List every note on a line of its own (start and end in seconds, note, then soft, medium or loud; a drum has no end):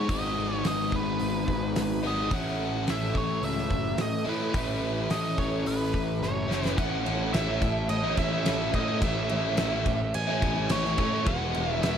0.00 0.11 B3 medium
0.00 0.11 C#5 medium
0.09 0.36 G#1 loud
0.09 2.02 G#2 medium
0.09 2.02 D#3 medium
0.09 2.04 G#3 medium
0.09 2.03 B3 medium
0.09 2.02 D#4 medium
0.09 0.55 D#5 medium
0.09 kick loud
0.09 open hi-hat soft
0.38 0.64 G#1 medium
0.55 0.66 C#5 medium
0.64 0.92 G#1 medium
0.64 0.95 D#5 medium
0.64 snare loud
0.64 open hi-hat medium
0.92 1.19 G#1 medium
0.92 2.07 B4 medium
0.92 kick medium
1.19 1.47 G#1 medium
1.19 open hi-hat medium
1.48 1.75 G#1 medium
1.48 kick medium
1.76 2.30 G#1 medium
1.76 snare loud
1.76 open hi-hat medium
2.03 2.29 G#2 medium
2.03 2.30 D#3 medium
2.03 2.31 G#3 medium
2.03 2.31 B3 medium
2.03 2.29 D#4 medium
2.07 2.34 D#5 medium
2.30 2.85 A1 loud
2.30 4.27 A2 medium
2.30 4.27 E3 medium
2.30 4.26 A3 medium
2.30 4.25 C#4 medium
2.30 4.24 E4 medium
2.30 2.90 F#5 loud
2.30 kick loud
2.30 open hi-hat soft
2.87 3.14 A1 medium
2.87 3.17 E5 loud
2.87 snare loud
2.87 open hi-hat soft
3.15 3.41 A1 medium
3.15 3.44 C#5 medium
3.15 kick medium
3.42 3.69 C#2 medium
3.42 4.01 E5 loud
3.42 open hi-hat medium
3.58 snare soft
3.71 3.97 F#1 medium
3.71 kick medium
3.98 4.25 A2 loud
3.98 snare loud
3.98 open hi-hat medium
4.02 4.29 D#5 loud
4.24 4.53 A2 medium
4.24 4.52 A2 medium
4.24 4.53 E3 medium
4.24 4.54 A3 medium
4.24 4.54 C#4 medium
4.24 4.55 E4 medium
4.29 5.14 B4 medium
4.52 4.81 A1 loud
4.52 6.47 A2 medium
4.52 6.48 E3 medium
4.52 6.48 A3 medium
4.52 6.48 C#4 medium
4.52 6.46 E4 loud
4.52 kick loud
4.52 open hi-hat medium
4.82 5.09 A1 medium
5.10 5.37 A1 medium
5.10 5.39 D#5 medium
5.10 snare loud
5.10 open hi-hat medium
5.38 5.65 A1 medium
5.38 5.65 C#5 medium
5.38 kick medium
5.66 5.93 A1 medium
5.66 6.46 B4 medium
5.66 open hi-hat medium
5.94 6.21 A1 medium
5.94 kick medium
6.22 6.75 F#1 medium
6.22 6.68 C#5 medium
6.22 snare medium
6.48 6.75 A2 medium
6.48 6.76 E3 medium
6.48 6.76 A3 medium
6.48 6.76 C#4 medium
6.48 6.75 E4 medium
6.48 snare medium
6.65 6.80 B4 medium
6.65 snare medium
6.76 7.05 A1 loud
6.76 7.31 A2 medium
6.76 7.04 E3 loud
6.76 7.04 A3 loud
6.76 7.05 C#4 loud
6.76 7.06 E4 loud
6.76 7.35 F#5 medium
6.76 kick loud
6.76 crash medium
7.04 7.33 A1 medium
7.04 7.32 E3 medium
7.04 7.32 A3 medium
7.04 7.33 C#4 medium
7.04 7.34 E4 medium
7.04 crash medium
7.31 7.87 A1 loud
7.31 8.44 A2 medium
7.31 7.61 E3 medium
7.31 7.50 A3 medium
7.31 7.48 C#4 loud
7.31 7.47 E4 loud
7.31 7.89 E5 medium
7.31 snare loud
7.31 crash medium
7.47 7.62 A3 medium
7.47 7.62 C#4 medium
7.47 7.63 E4 medium
7.62 muted overdriven electric guitar stroke soft
7.62 kick medium
7.62 crash medium
7.89 8.17 A1 medium
7.89 8.18 D#5 medium
7.89 crash medium
8.03 8.16 A3 medium
8.03 8.17 C#4 medium
8.03 8.18 E4 medium
8.16 8.45 A1 medium
8.16 8.45 E3 medium
8.16 8.32 A3 medium
8.16 8.31 C#4 medium
8.16 8.30 E4 medium
8.16 8.75 E5 medium
8.16 kick medium
8.16 crash medium
8.31 8.44 A3 medium
8.31 8.45 C#4 medium
8.31 8.46 E4 medium
8.44 8.73 A1 loud
8.44 8.87 A2 loud
8.44 8.71 E3 loud
8.44 8.60 A3 loud
8.44 8.58 C#4 loud
8.44 8.58 E4 loud
8.44 snare loud
8.44 crash medium
8.58 8.71 A3 medium
8.58 8.72 C#4 medium
8.58 8.74 E4 medium
8.71 9.01 A2 medium
8.71 9.00 E3 medium
8.71 8.88 A3 medium
8.71 8.87 C#4 medium
8.71 8.87 E4 medium
8.71 kick medium
8.71 crash medium
8.75 9.03 D#5 medium
8.87 9.01 A3 medium
8.87 9.01 C#4 medium
8.87 9.03 E4 medium
9.00 9.29 A1 loud
9.00 9.55 A2 medium
9.00 9.28 E3 loud
9.00 9.28 A3 loud
9.00 9.29 C#4 medium
9.00 9.31 E4 loud
9.00 10.18 E5 medium
9.00 kick loud
9.00 crash medium
9.28 9.58 A1 medium
9.28 9.57 E3 medium
9.28 9.57 A3 medium
9.28 9.57 C#4 medium
9.28 9.59 E4 medium
9.28 crash medium
9.56 10.13 A1 medium
9.56 9.99 A2 loud
9.56 9.85 E3 loud
9.56 9.72 A3 medium
9.56 9.70 C#4 medium
9.56 9.70 E4 loud
9.56 snare loud
9.56 crash medium
9.70 9.85 A3 medium
9.70 9.85 C#4 medium
9.70 9.86 E4 medium
9.85 muted overdriven electric guitar stroke soft
9.85 kick medium
9.85 crash medium
10.14 10.41 A1 medium
10.14 10.72 G#5 loud
10.14 crash medium
10.27 10.42 A3 medium
10.27 10.42 C#4 medium
10.27 10.44 E4 medium
10.42 10.69 A1 medium
10.42 10.70 E3 medium
10.42 10.56 A3 medium
10.42 10.54 C#4 medium
10.42 10.54 E4 medium
10.42 kick medium
10.42 crash medium
10.54 10.70 A3 medium
10.54 10.70 C#4 medium
10.54 10.71 E4 medium
10.69 10.97 A1 loud
10.69 11.12 A2 medium
10.69 10.98 E3 loud
10.69 10.85 A3 loud
10.69 10.83 C#4 loud
10.69 10.83 E4 loud
10.69 11.29 C#5 medium
10.69 snare loud
10.69 crash medium
10.83 10.98 A3 medium
10.83 10.98 C#4 medium
10.83 11.00 E4 medium
10.83 snare soft
10.98 11.25 A2 medium
10.98 11.24 E3 medium
10.98 11.13 A3 medium
10.98 11.11 C#4 medium
10.98 11.11 E4 medium
10.98 kick medium
10.98 crash medium
11.11 11.25 A3 medium
11.11 11.25 C#4 medium
11.11 11.27 E4 medium
11.25 11.53 E1 loud
11.25 11.54 E3 loud
11.25 11.55 G#3 loud
11.25 11.55 B3 loud
11.25 11.56 E4 loud
11.25 11.72 F#5 medium
11.25 kick loud
11.25 crash medium
11.54 11.82 E1 medium
11.54 11.82 E3 medium
11.54 11.83 G#3 medium
11.54 11.83 B3 medium
11.54 11.84 E4 medium
11.54 crash medium
11.72 11.83 E5 medium
11.82 11.98 E1 loud
11.82 11.98 E3 medium
11.82 11.98 G#3 medium
11.82 11.97 B3 loud
11.82 11.96 E4 loud
11.82 11.98 E5 medium
11.82 snare loud
11.82 crash medium